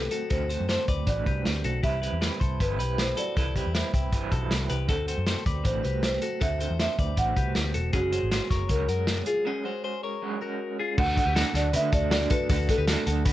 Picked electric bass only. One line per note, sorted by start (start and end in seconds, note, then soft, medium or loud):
0.31 0.56 D2 medium
0.60 0.77 F#2 medium
0.88 1.05 D2 medium
1.07 1.24 A1 medium
1.26 1.43 C2 medium
1.46 1.62 D2 medium
1.65 1.81 B1 medium
1.83 2.08 C2 medium
2.12 2.29 E2 medium
2.41 2.57 C2 medium
2.60 2.80 G1 medium
2.80 3.12 B1 medium
3.37 3.61 C2 medium
3.66 3.82 E2 medium
3.94 4.13 C2 medium
4.13 4.29 G1 medium
4.32 4.48 B1 medium
4.51 4.67 C2 medium
4.71 4.89 C2 medium
4.89 5.13 D2 medium
5.18 5.34 F#2 medium
5.46 5.62 D2 medium
5.65 5.81 A1 medium
5.85 6.17 C2 medium
6.42 6.66 D2 medium
6.70 6.86 E2 medium
6.99 7.15 D2 medium
7.18 7.34 A1 medium
7.37 7.53 C2 medium
7.56 7.72 D2 medium
7.76 7.91 E1 medium
7.93 8.18 F#1 medium
8.23 8.39 G#1 medium
8.51 8.67 F#1 medium
8.70 8.86 C#2 medium
8.89 9.21 F#2 medium
10.98 11.14 D2 loud
11.26 11.42 D2 loud
11.54 11.75 D2 loud
11.74 11.90 D3 loud
11.93 12.25 D2 medium
12.50 12.66 D2 medium
12.78 12.95 D2 loud
13.07 13.23 D2 loud
13.26 13.33 D3 loud